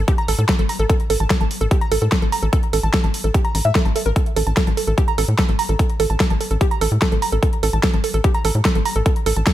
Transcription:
0.08 G4, kick, closed hi-hat
0.18 A#5, closed hi-hat
0.28 A1 A4, open hi-hat
0.39 A2 A4, closed hi-hat
0.49 A4, kick, snare, closed hi-hat
0.59 A1 A4, closed hi-hat
0.69 A#5, open hi-hat
0.79 A1 A4, closed hi-hat
0.90 A4, kick, closed hi-hat
1.00 closed hi-hat
1.10 A1 A4, open hi-hat
1.20 A1 A5, closed hi-hat
1.30 A4, kick, snare, closed hi-hat
1.41 A1 A5, closed hi-hat
1.51 open hi-hat
1.61 A1 A4, closed hi-hat
1.71 G4, kick, closed hi-hat
1.81 A#5, closed hi-hat
1.92 A1 A4, open hi-hat
2.02 A2 A4, closed hi-hat
2.12 A4, kick, snare, closed hi-hat
2.22 A1 A4, closed hi-hat
2.32 A#5, open hi-hat
2.43 A1 A4, closed hi-hat
2.53 A4, kick, closed hi-hat
2.63 closed hi-hat
2.73 A1 A4, open hi-hat
2.83 A1 A5, closed hi-hat
2.94 A4, kick, snare, closed hi-hat
3.04 A1 A5, closed hi-hat
3.14 open hi-hat
3.24 A1 A4, closed hi-hat
3.34 G4, kick, closed hi-hat
3.45 A#5, closed hi-hat
3.55 A1 A#5, open hi-hat
3.65 A2 E5, closed hi-hat
3.75 A4, kick, snare, closed hi-hat
3.85 A1 A5, closed hi-hat
3.96 A4, open hi-hat
4.06 A1 A#4, closed hi-hat
4.16 A4, kick, closed hi-hat
4.26 closed hi-hat
4.36 A1 A4, open hi-hat
4.47 A1 A5, closed hi-hat
4.57 A4, kick, snare, closed hi-hat
4.67 A1 A5, closed hi-hat
4.77 A4, open hi-hat
4.87 A1 A4, closed hi-hat
4.98 G4, kick, closed hi-hat
5.08 A#5, closed hi-hat
5.18 A1 A4, open hi-hat
5.28 A2, closed hi-hat
5.39 A4, kick, snare, closed hi-hat
5.49 A1 A4, closed hi-hat
5.59 A#5, open hi-hat
5.69 A1 A4, closed hi-hat
5.79 A4, kick, closed hi-hat
5.90 closed hi-hat
6.00 A1 A4, open hi-hat
6.10 A1 A5, closed hi-hat
6.20 A4, kick, snare, closed hi-hat
6.30 A1 A5, closed hi-hat
6.41 A4, open hi-hat
6.51 A1 A4, closed hi-hat
6.61 G4, kick, closed hi-hat
6.71 A#5, closed hi-hat
6.81 A1 A4, open hi-hat
6.92 A2, closed hi-hat
7.02 A4, kick, snare, closed hi-hat
7.12 A1 A4, closed hi-hat
7.22 A#5, open hi-hat
7.32 A1 A4, closed hi-hat
7.43 A4, kick, closed hi-hat
7.53 closed hi-hat
7.63 A1 A4, open hi-hat
7.73 A1 A5, closed hi-hat
7.83 A4, kick, snare, closed hi-hat
7.94 A1 A5, closed hi-hat
8.04 A4, open hi-hat
8.14 A1 A4, closed hi-hat
8.24 G4, kick, closed hi-hat
8.34 A#5, closed hi-hat
8.45 A1 A4, open hi-hat
8.55 A2, closed hi-hat
8.65 A4, kick, snare, closed hi-hat
8.75 A1 A4, closed hi-hat
8.85 A#5, open hi-hat
8.96 A1 A4, closed hi-hat
9.06 A4, kick, closed hi-hat
9.16 closed hi-hat
9.26 A1 A4, open hi-hat
9.36 A1 A5, closed hi-hat
9.47 A4, kick, snare, closed hi-hat

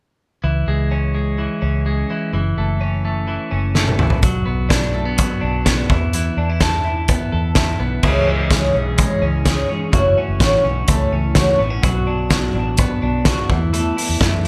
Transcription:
0.44 C#2 E3
0.67 C#2 G#3
0.91 C#4
1.15 G#3
1.38 E3
1.62 C#2 C#4
1.86 G#3
2.10 E3
2.33 F#1 E3
2.58 F#1 A3
2.81 C#4
3.05 A3
3.28 E3
3.51 F#1 C#4
3.75 A3, snare
3.88 high tom
3.99 A1 E3, mid tom
4.10 floor tom
4.23 B1 F#3, kick, closed hi-hat
4.46 B1 B3
4.69 D4, kick, snare, closed hi-hat
4.94 A3
5.06 B3
5.17 F#3, kick, closed hi-hat
5.41 B1 D4
5.65 B3, kick, snare, closed hi-hat
5.89 E2 E3, kick
6.13 E3, closed hi-hat
6.37 E2 D4
6.50 E4
6.60 A4, kick, snare, closed hi-hat
6.85 E4
7.08 B3, kick, closed hi-hat
7.32 E2 A4
7.55 E4, kick, snare, closed hi-hat
7.80 B1 B3
8.03 C#2 C#3 E3 G#3 C#4 G#4, kick, crash
8.27 E3 G#3 C#4
8.51 C#3 E3 G#3 C#4 G#4, kick, snare, closed hi-hat
8.74 B1 G#3 C#4
8.97 C#3 E3 G#3 C#4, kick, closed hi-hat
9.21 C#2 E3 G#3 C#4
9.45 C#3 E3 G#3 C#4 G#4, kick, snare, closed hi-hat
9.69 E3 G#3 C#4
9.92 F#1 F#2 C#3 E3 A3 C#4 F#4, kick, closed hi-hat
10.16 A3 C#4
10.28 F#1
10.39 A1 F#2 C#3 E3 A3 C#4 F#4, kick, snare, closed hi-hat
10.63 B1 E3 A3 C#4
10.88 C#2 C#3 E3 A3 C#4, kick, closed hi-hat
11.11 C#2 E3 A3 C#4
11.35 F#2 C#3 E3 A3 C#4 F#4, kick, snare, closed hi-hat
11.59 A1 A3 B3 C#4
11.70 C#4
11.83 B1 B2 F#3 B3 D4 F#4, kick, closed hi-hat
12.05 F#3 B3 D4
12.29 B2 F#3 B3 D4 F#4, kick, snare, closed hi-hat
12.53 A1 F#3 B3 D4
12.76 B2 F#3 B3 D4, kick, closed hi-hat
13.01 B1 F#3 B3 D4
13.25 B2 F#3 B3 D4 F#4, kick, snare, closed hi-hat
13.49 E2 E3 A3 B3 E4, kick
13.73 E3 A3 B3 E4 A4, closed hi-hat
13.96 A3 B3 E4, open hi-hat
14.09 E2
14.20 F#2 E3 A3 B3 E4 A4, kick, snare, closed hi-hat
14.44 G#2 E4

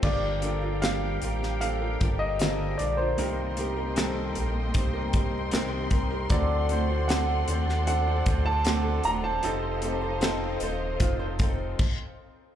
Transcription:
0.02 G1 G2 D3 F3 G3 A#3 D4 F4 G4 A#4 D5 F5 G5, kick, crash
0.42 F3 G3 A#3 D4 F4 A4 A#4, closed hi-hat
0.61 D4 F4 A#4
0.81 F3 G3 A#3 D4 F4 G4 A#4 F5, snare, closed hi-hat
1.21 A1 G3 D4 F4 A#4, closed hi-hat
1.43 snare
1.61 F3 A#3 D4 A4 F5, closed hi-hat
1.81 D4 F4 A#4
2.00 G1 G3 D4 F4 A#4, kick, closed hi-hat
2.19 D#5
2.39 D3 F3 G3 A#3 F4 G#4 A#4, snare, closed hi-hat
2.48 A4
2.78 A#1 G3 D4 F4 A#4 D5, closed hi-hat
2.97 D4 F4 A#4 C5
3.17 C2 G2 C3 D#3 G3 A#3 C4 D#4 G4 A#4 D#5 G5 C6, closed hi-hat
3.57 G3 C4 D#4 G4 A#4, closed hi-hat
3.76 G3 C4 G4 A#4
3.96 C3 D#3 G3 C4 D#4 G4 A4 A#4, snare, closed hi-hat
4.35 A#1 G3 C4 G4 A#4, closed hi-hat
4.74 C2 G3 C4 D#4 C5, kick, closed hi-hat
4.94 G3 C4 G4 A#4
5.13 G3 C4 G4 A#4, kick, closed hi-hat
5.51 C2 C3 D#3 G3 C4 D#4 G4 A#4, snare, closed hi-hat
5.91 C2 G3 C4 G4 A#4, kick, closed hi-hat
6.10 G3 C4 G4 A#4
6.30 D2 A2 D3 F#3 A3 C4 D4 F#4 A4 C5 D5 F#5, kick, closed hi-hat
6.69 F#3 A3 C4 D4 F#4 C5, closed hi-hat
6.89 C4 F#4 C5
7.08 D3 F#3 A3 C4 D4 F#4 A4 C5 F#5, snare, closed hi-hat
7.47 D#2 A3 C4 F#4 C5, closed hi-hat
7.69 snare
7.87 F#3 C4 D4 A4 F#5, closed hi-hat
8.06 C4 F#4 C5
8.26 D2 A3 C4 F#4 C5, kick, closed hi-hat
8.46 A5
8.65 D3 F#3 A3 C4 D4 F#4 A4 C5, snare, closed hi-hat
9.04 D#1 A3 C4 F#4 C5 A#5, closed hi-hat
9.24 C4 F#4 C5 A5
9.43 F1 C3 F3 C4 D#4 A4 C5 D#5 F5, closed hi-hat
9.82 F3 C4 D#4 G4 A4 C5, closed hi-hat
10.02 D#4 A4 C5
10.21 F3 C4 D#4 A4 C5, snare, closed hi-hat
10.60 D#1 C4 D#4 A4 C5, closed hi-hat
11.00 F1 F3 C4 D#4 F4, kick, closed hi-hat
11.19 D#4 A4 C5
11.39 C4 D#4 A4 C5, kick, closed hi-hat
11.79 kick, crash

